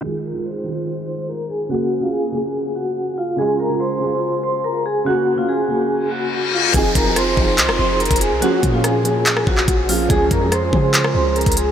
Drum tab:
HH |--------------------------------|--------------------------------|--------------------------------|--------------------------------|
CP |--------------------------------|--------------------------------|--------------------------------|--------------------------------|
SD |--------------------------------|--------------------------------|--------------------------------|--------------------------------|
BD |--------------------------------|--------------------------------|--------------------------------|--------------------------------|

HH |x---x---x-------x-------xxxxx---|x---x---x---x---x-------x---o---|x---x---x-------x-------xxxxx---|
CP |----------------x---------------|----------------x-----x---------|----------------x---------------|
SD |--------r---------r-------------|--------r---------r-------------|--------r---------r-------------|
BD |o---o-------o-------------o-----|----o---------------o---o-------|o---o-------o-------------o-----|